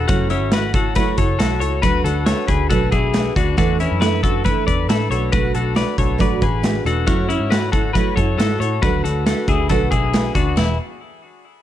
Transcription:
0.08 F#1 F#3 A3 C#4 E4 F#4 C#5, kick, closed hi-hat
0.30 C#4 E4 F#4 C#5, closed hi-hat
0.42 G#1
0.52 A3 E4 F#4 B4 C#5, snare, closed hi-hat
0.74 E4 F#4 A4 C#5, kick, closed hi-hat
0.95 F#3 A3 E4 F#4 B4 C#5, kick, closed hi-hat
1.18 F#1 E4 F#4 A4 C#5, kick, closed hi-hat
1.39 B1 A3 E4 F#4 A4 C#5, snare, closed hi-hat
1.60 C#2 F#4 A4 C#5, closed hi-hat
1.64 E4
1.82 D2 D3 F#3 A3 D4 F#4 B4, kick, closed hi-hat
2.04 D2 A3 D4 F#4 A4 B4, closed hi-hat
2.26 A3 D4 F#4 A4 B4 C#5, snare, closed hi-hat
2.48 D2 A3 D4 F#4 G#4 B4, kick, closed hi-hat
2.70 B1 D3 F#3 A3 D4 F#4 A4 B4, kick, closed hi-hat
2.92 B1 A3 D4 E4 F#4 G#4 B4, kick, closed hi-hat
3.13 A3 D4 F#4 B4, snare, closed hi-hat
3.36 D2 A3 D4 F#4 B4, kick, closed hi-hat
3.57 E2 E3 A3 D4 F#4 A4 B4, kick, closed hi-hat
3.79 C#4 D4 E4 A4 B4, closed hi-hat
3.91 F#2
4.00 A3 D4 E4 A4 B4, snare, closed hi-hat
4.22 D4 F#4 A4 B4, kick, closed hi-hat
4.44 E3 A3 D4 E4 A4 B4, kick, closed hi-hat
4.67 E2 D4 A4 B4 D5, kick, closed hi-hat
4.88 A2 A3 D4 E4 A4 B4, snare, closed hi-hat
5.10 B1 A3 D4 F#4 A4 B4 C#5, closed hi-hat
5.32 B1 B2 F#3 A3 D4 F#4 B4, kick, closed hi-hat
5.53 B1 A3 D4 F#4 A4 B4, closed hi-hat
5.75 A3 D4 F#4 B4 D5, snare, closed hi-hat
5.98 B1 A3 D4 F#4 A4 B4 C#5, kick, closed hi-hat
6.18 A1 B2 F#3 A3 D4 F#4 B4 D5, kick, closed hi-hat
6.40 A1 A3 D4 F#4 G#4 B4, kick, closed hi-hat
6.62 A3 D4 F#4 B4, snare, closed hi-hat
6.85 E1 A3 D4 F#4 A4 B4, closed hi-hat
7.06 F#2 F#3 A3 C#4 E4 F#4 C#5, kick, closed hi-hat
7.28 C#4 E4 F#4 C#5, closed hi-hat
7.40 G#2
7.50 A3 E4 F#4 B4 C#5, snare, closed hi-hat
7.72 E4 F#4 A4 C#5, kick, closed hi-hat
7.93 F#3 A3 E4 F#4 B4 C#5, kick, closed hi-hat
8.16 F#2 E4 F#4 A4 C#5, kick, closed hi-hat
8.38 G#2 A3 E4 F#4 A4 C#5, snare, closed hi-hat
8.60 A2 E4 F#4 A4 C#5, closed hi-hat
8.82 D2 D3 F#3 A3 D4 F#4 B4, kick, closed hi-hat
9.04 D2 A3 D4 F#4 A4 B4, closed hi-hat
9.26 A3 D4 F#4 A4 B4, snare, closed hi-hat
9.48 D2 A3 D4 E4 F#4 G#4 B4, kick, closed hi-hat
9.69 B1 D3 F#3 A3 D4 F#4 A4 B4, kick, closed hi-hat
9.91 B1 A3 D4 E4 F#4 G#4 B4, kick, closed hi-hat
10.14 A3 D4 F#4 B4, snare, closed hi-hat
10.35 D2 A3 D4 F#4 B4, kick, closed hi-hat
10.56 E1 E3 B3 E4 G#4 B4, snare, crash

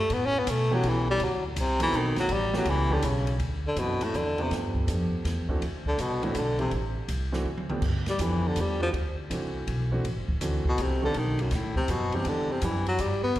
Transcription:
0.00 A3
0.10 A2 B3, kick, ride
0.26 C#4
0.39 B3
0.47 B2 A3, kick, hi-hat pedal, ride
0.71 E3 F#3 A3 B3 C#4 G4
0.83 B1, kick, ride
0.88 E3
1.10 G3
1.20 D2, kick, ride
1.24 F#3
1.46 A2
1.56 C2 C3, kick, hi-hat pedal, ride
1.80 D#3 E3 A3 B3 C4 F#4, ride
1.92 B1, kick, hi-hat pedal
1.96 D#3
2.16 F#3, muted upright bass stroke, snare, ride
2.29 A1, kick, ride
2.33 G3
2.53 E3 F#3 A3 B3 C#4 G4, snare
2.65 C#2, kick, ride
2.70 E3
2.90 D3 E3 A3 B3 C#4 G4, kick
3.02 B1 C#3, kick, hi-hat pedal, ride
3.27 ride
3.40 D2, kick, ride
3.67 D3
3.76 F#2 B2 E3 A3 C4 D4 F#4, kick, hi-hat pedal, ride
4.00 A2, muted upright bass stroke, ride
4.14 E2 D3, kick, hi-hat pedal
4.38 C3 F3 A3 B3 D4 G4, ride
4.51 G2, kick, snare, ride
4.75 kick
4.87 F2 F3 A3 B3 D4 G4, hi-hat pedal, ride
5.11 muted upright bass stroke
5.24 E2, kick, snare, ride
5.49 E3 A3 C4 D4 F#4, kick
5.61 D2, ride
5.86 D3, kick
5.98 C2 B2, kick, hi-hat pedal, ride
6.22 A2 E3 A3 C4 D4 F#4, ride
6.35 B1 D3, kick, hi-hat pedal, ride
6.59 C3 E3 G3 A3 C4 E4, ride
6.71 A1, kick, ride
7.08 C2, kick, hi-hat pedal, ride
7.32 E3 A3 C4 D4 F#4, snare
7.45 D2
7.58 high tom
7.69 F3 A3 B3 D4 G4, mid tom
7.82 G2, kick, crash
8.06 G3, snare, ride
8.19 F2 E3 F3 A3 B3 D4 G4, kick, hi-hat pedal, ride
8.47 D3
8.56 E2, kick, hi-hat pedal, ride
8.61 G3
8.80 E3 F3 A3 C4 D4 F#4
8.93 D2, kick, ride
9.30 C2 E3 A3 C4 D4 F#4, kick, hi-hat pedal, ride
9.67 B1, kick, ride
9.91 E3 A3 C4 D4 F#4
10.04 A1, kick, ride
10.16 F#1
10.28 D1, kick
10.41 D2 E3 A3 C4 D4 F#4, hi-hat pedal, ride
10.65 B2, muted upright bass stroke, kick
10.78 C2, kick, hi-hat pedal, ride
10.82 C3
11.02 D3 D#3 A3 B3 C4 A4
11.14 B1 D#3, kick, ride
11.39 F#2, ride
11.51 D#2 A2, kick, snare, ride
11.76 C3, kick
11.88 F#2 B2, kick, hi-hat pedal, ride
12.12 C3 E3 G3 B3 D4 G4, ride
12.25 E2 D3, kick, ride
12.52 C3
12.62 F#2 E3 G3 B3 D4 G4, kick, hi-hat pedal, ride
12.86 F#3, ride
12.98 G2 G3, kick, hi-hat pedal, ride
13.23 B3
13.35 A2, kick, ride

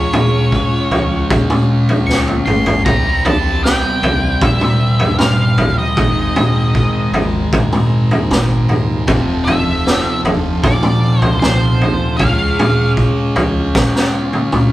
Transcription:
Already playing: C#3 G#3 C#4 F4 G#4 C#5
0.13 floor tom, mid tom
0.52 kick
0.91 C#2, floor tom
1.30 kick, floor tom
1.50 mid tom
1.89 floor tom
2.07 C#2 C#6, snare
2.28 high tom
2.46 G#1 C6, mid tom
2.66 floor tom
2.85 C2 C3 E3 G3 C4 G4 A#5, kick, floor tom
3.25 A5, floor tom
3.64 G5, snare
4.02 C2, floor tom
4.41 E5, kick, floor tom
4.61 mid tom
4.99 G2, floor tom
5.19 F5, snare, mid tom
5.57 A1, floor tom
5.78 D#5
5.96 G#1 G#2 D#3 G#3 G#4 A#4, kick, floor tom
6.36 floor tom, mid tom
6.75 kick
7.12 G#1, floor tom
7.53 kick, floor tom
7.73 mid tom
8.11 floor tom
8.30 G#1, snare, mid tom
8.69 D#2, floor tom
9.07 F1 F2 C3 F3 C4 F4 A4, kick, floor tom
9.45 E5, floor tom
9.87 snare
10.24 F1, floor tom
10.63 D5, kick, floor tom
10.83 mid tom
11.21 C2 C5, floor tom
11.39 C5, snare, mid tom
11.81 A#1, floor tom
12.17 C#2 C#3 G#3 C#4 G#4 F5, kick, floor tom
12.21 C#4
12.59 floor tom, mid tom
12.97 kick
13.36 C#2, floor tom
13.75 kick, snare
13.96 snare
14.33 high tom
14.52 C#2, mid tom

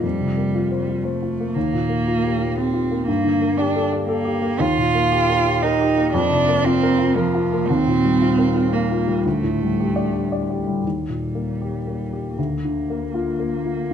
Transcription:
0.03 F2 G3
0.20 C3
0.38 A#3
0.55 F4
0.72 C5
0.78 G3
0.89 F4
1.04 A3 C5
1.22 F4
1.40 A#3
1.54 D#2 A#3
1.73 A#2
1.89 A#3
2.07 F4
2.24 G4
2.39 F4
2.57 C4 G4
2.74 F4
2.91 A#3
3.07 G2 A#3
3.24 D3
3.42 A#3
3.57 D4 G4
3.76 A4
3.93 G4
4.08 A#3 A4
4.25 G4
4.42 A#3
4.60 D#2 F4
4.78 A#2
4.95 A#3
5.12 G4
5.29 A#4
5.46 G4
5.62 D#4 A#4
5.81 G4
5.97 A#3
6.13 F2 D4
6.30 C3
6.48 A#3
6.64 C4 F4
6.83 A#4
6.99 F4
7.16 F3 A#4
7.34 F4
7.53 A#3
7.68 D#2 C4
7.87 A#2
8.05 G3
8.21 F4
8.39 A#4
8.55 F4
8.73 A#3 A#4
8.91 F4
9.07 G3
9.26 D2 A3
9.43 A2
9.63 G3
9.80 G4
9.96 D5
10.14 G4
10.32 D5
10.50 G4
10.67 G3
10.84 D#2 G3
11.09 A#2
11.35 A#3
11.61 G4
11.87 A#3
12.13 G4
12.37 D2 A#3
12.65 D3
12.90 A#3
13.14 F4
13.40 A#3
13.65 F4

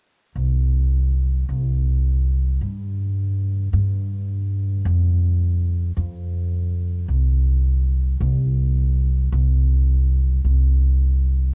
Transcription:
0.36 C2
1.49 C2
2.61 G2
3.73 G2
4.85 F2
5.97 F2
7.08 C2
8.21 C2
9.32 C2
10.44 C2

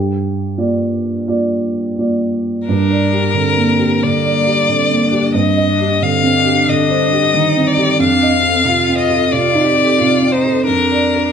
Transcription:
Already playing: G2 G4
0.58 A#3 F4 D5
1.27 A#3 F4 D5
1.98 A#3 F4 D5
2.68 G2 D4 A#4
2.91 D5
3.13 G4
3.34 D3 C4
3.57 A#3
3.79 G4
4.03 D3 A#3 D5
4.24 D5
4.47 G4
4.69 D3 C4
4.91 A#3
5.04 D4
5.12 G4
5.34 G2 C4 D#5
5.57 D#5
5.70 D4
5.80 G4
6.02 D3 C4 F5
6.23 C4
6.36 D4
6.45 G4
6.68 D3 D#5
6.90 C5
7.13 G4
7.34 D#3 D#4
7.57 C4
7.67 D5
7.78 G4
7.99 F2 D4 F5
8.23 D#5
8.35 C4
8.43 A4
8.65 C3 F4
8.89 C4
8.98 D#5
9.10 A4
9.32 C3 F4 D5
9.55 D#4
9.65 G4
9.78 A4
9.99 C3 F4
10.22 C4
10.32 D#4 C5
10.45 A4
10.66 F2 D4 A#4
10.92 D5
11.15 A#4

